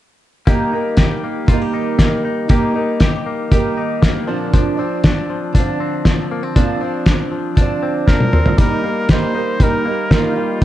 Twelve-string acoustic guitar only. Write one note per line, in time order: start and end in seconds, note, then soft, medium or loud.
0.47 0.72 D#3 medium
0.47 0.73 G3 medium
0.47 0.73 A#3 medium
0.47 0.70 D#4 medium
0.72 1.48 G3 soft
0.72 1.50 A#3 soft
0.72 1.48 D#4 soft
1.46 2.47 D#3 medium
1.46 2.48 G3 medium
1.51 2.49 A#3 medium
1.51 2.49 D#4 medium
2.48 2.74 D#3 medium
2.48 2.75 G3 medium
2.48 2.74 A#3 medium
2.48 2.73 D#4 medium
2.74 3.50 G3 soft
2.74 3.53 A#3 soft
2.74 3.51 D#4 medium
3.51 4.27 D#3 medium
3.51 4.28 G3 medium
3.51 4.28 A#3 medium
3.51 4.27 D#4 medium
4.27 4.80 A#2 medium
4.27 4.79 D3 medium
4.27 4.79 F3 medium
4.27 4.79 C4 medium
4.27 4.76 D4 medium
4.77 5.55 F3 soft
4.77 5.55 C4 soft
4.77 5.54 D4 medium
5.52 6.55 D3 medium
5.52 6.56 F3 medium
5.59 6.56 C4 medium
5.59 6.56 D4 medium
6.56 6.81 A#2 medium
6.56 6.81 D3 medium
6.56 6.82 F3 medium
6.56 6.82 C4 medium
6.56 6.79 D4 medium
6.80 7.57 F3 soft
6.80 7.58 C4 soft
6.80 7.57 D4 medium
7.55 8.58 D3 medium
7.55 8.58 F3 medium
7.60 8.59 C4 medium
7.60 8.60 D4 medium
8.58 8.84 D#3 medium
8.58 8.84 G3 medium
8.58 8.84 A#3 medium
8.58 8.82 D#4 medium
8.83 9.10 G3 soft
8.83 9.10 A#3 soft
8.83 9.09 D#4 soft
9.10 9.35 D#3 medium
9.10 9.36 G3 medium
9.10 9.36 A#3 medium
9.10 9.34 D#4 medium
9.35 9.61 G3 soft
9.35 9.61 A#3 soft
9.35 9.61 D#4 soft
9.60 9.86 D#3 soft
9.60 9.87 G3 soft
9.60 9.87 A#3 medium
9.60 9.86 D#4 medium
9.87 10.11 G3 soft
9.87 10.12 A#3 soft
9.87 10.12 D#4 soft
10.11 10.37 D#3 medium
10.11 10.37 G3 medium
10.11 10.36 A#3 medium
10.11 10.34 D#4 medium
10.36 10.60 G3 soft
10.36 10.61 A#3 soft
10.36 10.62 D#4 medium
10.61 10.64 D#3 medium